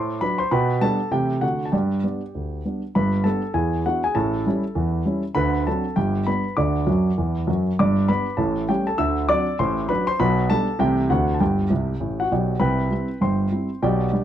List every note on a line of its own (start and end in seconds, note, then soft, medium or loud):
0.00 0.17 A2 medium
0.00 0.20 C5 medium
0.00 0.20 A5 medium
0.00 0.21 C6 medium
0.21 0.38 F#3 soft
0.21 0.39 D4 soft
0.21 0.39 B4 medium
0.21 0.39 B5 medium
0.38 0.51 C5 medium
0.38 0.51 C6 medium
0.51 0.77 B2 medium
0.51 0.80 B4 medium
0.51 0.80 G5 medium
0.51 0.82 B5 medium
0.81 0.98 G3 medium
0.81 0.99 B3 soft
0.81 0.99 D4 medium
0.81 1.11 A4 medium
0.81 1.12 A5 loud
1.11 1.38 C3 medium
1.11 1.28 E3 soft
1.11 1.29 A3 soft
1.11 1.29 E4 soft
1.11 1.41 G4 medium
1.11 1.42 G5 medium
1.41 1.68 D3 medium
1.41 1.58 A3 soft
1.41 1.59 D4 soft
1.41 1.65 F#4 medium
1.41 1.66 F#5 medium
1.65 1.72 A5 medium
1.72 1.99 G2 medium
1.72 2.60 G4 soft
1.72 2.60 D5 soft
1.72 2.63 G5 medium
2.04 2.20 G3 soft
2.04 2.20 B3 soft
2.04 2.21 D4 soft
2.35 2.60 D2 soft
2.65 2.82 G3 soft
2.65 2.81 B3 soft
2.65 2.82 D4 soft
2.95 3.21 G1 medium
2.95 3.21 G2 medium
2.95 3.23 B4 medium
2.95 3.25 B5 medium
3.24 3.41 G3 soft
3.24 3.41 B3 soft
3.24 3.41 D4 soft
3.24 3.53 A4 medium
3.24 3.54 A5 medium
3.54 3.80 E2 medium
3.54 3.80 E3 medium
3.54 3.83 G#4 soft
3.54 3.85 G#5 medium
3.86 4.02 B3 soft
3.86 4.02 D4 soft
3.86 4.03 E4 soft
3.86 4.02 F#4 medium
3.86 4.03 F#5 medium
4.04 4.15 G#4 medium
4.04 4.16 G#5 medium
4.15 4.41 A1 medium
4.15 4.41 A2 medium
4.15 5.20 A4 medium
4.15 5.23 A5 medium
4.46 4.63 G3 medium
4.46 4.63 C#4 soft
4.46 4.64 E4 medium
4.75 5.01 E2 medium
4.75 5.01 E3 medium
5.05 5.22 G3 soft
5.05 5.22 C#4 soft
5.05 5.22 E4 medium
5.35 5.61 D2 medium
5.35 5.61 D3 medium
5.35 5.64 B4 medium
5.35 5.66 B5 medium
5.67 5.83 F#3 soft
5.67 5.84 C4 soft
5.67 5.84 D4 medium
5.67 5.95 A4 medium
5.67 5.97 A5 medium
5.96 6.23 G1 medium
5.96 6.22 G2 medium
5.96 6.25 G4 medium
5.96 6.27 G5 medium
6.26 6.43 G3 soft
6.26 6.43 B3 soft
6.26 6.44 D4 soft
6.26 6.55 B4 medium
6.26 6.57 B5 medium
6.57 6.83 D2 medium
6.57 6.83 D3 medium
6.57 7.62 D5 medium
6.57 7.65 D6 medium
6.87 7.10 F#2 medium
6.87 7.10 F#3 medium
7.18 7.40 E2 medium
7.18 7.40 E3 medium
7.47 7.70 F#2 medium
7.47 7.70 F#3 medium
7.79 8.04 G1 medium
7.79 8.05 G2 medium
7.79 8.07 D5 medium
7.79 8.09 D6 medium
8.09 8.25 G3 soft
8.09 8.25 B3 soft
8.09 8.26 D4 soft
8.09 8.37 B4 medium
8.09 8.39 B5 medium
8.37 8.64 A1 medium
8.37 8.63 A2 medium
8.37 8.67 A4 medium
8.37 8.68 A5 medium
8.69 8.86 G3 soft
8.69 8.85 A3 soft
8.69 8.86 C#4 soft
8.69 8.86 G4 medium
8.69 8.87 G5 medium
8.87 8.99 A4 medium
8.87 8.99 A5 medium
8.98 9.24 D2 medium
8.98 9.24 D3 medium
8.98 9.27 E5 medium
8.98 9.29 E6 medium
9.29 9.46 F#3 soft
9.29 9.46 C4 soft
9.29 9.46 D4 medium
9.29 9.57 D5 medium
9.29 9.59 D6 medium
9.59 9.85 A1 medium
9.59 9.85 A2 medium
9.59 9.88 C5 medium
9.59 9.89 C6 medium
9.89 10.05 F#3 soft
9.89 10.06 D4 soft
9.89 10.06 B4 medium
9.89 10.07 B5 medium
10.07 10.19 C5 medium
10.07 10.20 C6 medium
10.20 10.45 B1 medium
10.20 10.45 B2 medium
10.20 10.48 B4 medium
10.20 10.50 B5 medium
10.50 10.66 G3 medium
10.50 10.67 B3 medium
10.50 10.67 D4 medium
10.50 10.79 A4 medium
10.50 10.80 A5 loud
10.79 11.05 C2 medium
10.79 11.05 C3 medium
10.79 10.96 E3 soft
10.79 10.96 A3 soft
10.79 10.97 E4 soft
10.79 11.08 G4 medium
10.79 11.10 G5 medium
11.10 11.36 D2 medium
11.10 11.36 D3 medium
11.10 11.27 A3 soft
11.10 11.27 D4 soft
11.10 11.33 F#4 medium
11.10 11.34 F#5 medium
11.34 11.40 A5 medium
11.40 11.66 G1 medium
11.40 11.66 G2 medium
11.40 12.28 G4 medium
11.40 12.31 G5 medium
11.70 11.93 C2 medium
11.70 11.93 C3 medium
12.00 12.23 A1 soft
12.00 12.23 A2 medium
12.20 12.31 F#4 medium
12.20 12.31 F#5 medium
12.31 12.54 B1 medium
12.31 12.54 B2 medium
12.31 12.60 G4 soft
12.31 12.60 D5 soft
12.31 12.59 G5 medium
12.60 12.86 C2 medium
12.60 12.86 C3 medium
12.60 13.17 B4 medium
12.60 13.17 G5 medium
12.60 13.20 B5 medium
12.90 13.07 G3 soft
12.90 13.08 C4 soft
12.90 13.08 E4 soft
13.21 13.47 G1 medium
13.21 13.47 G2 medium
13.21 13.78 C5 medium
13.21 13.78 G5 medium
13.21 13.82 C6 medium
13.51 13.68 G3 soft
13.51 13.68 C4 soft
13.51 13.69 E4 soft
13.82 14.08 B1 medium
13.82 14.08 B2 medium
13.82 14.24 G4 medium
13.82 14.24 D5 medium
13.82 14.24 G5 medium
14.12 14.24 G3 soft
14.12 14.24 D4 soft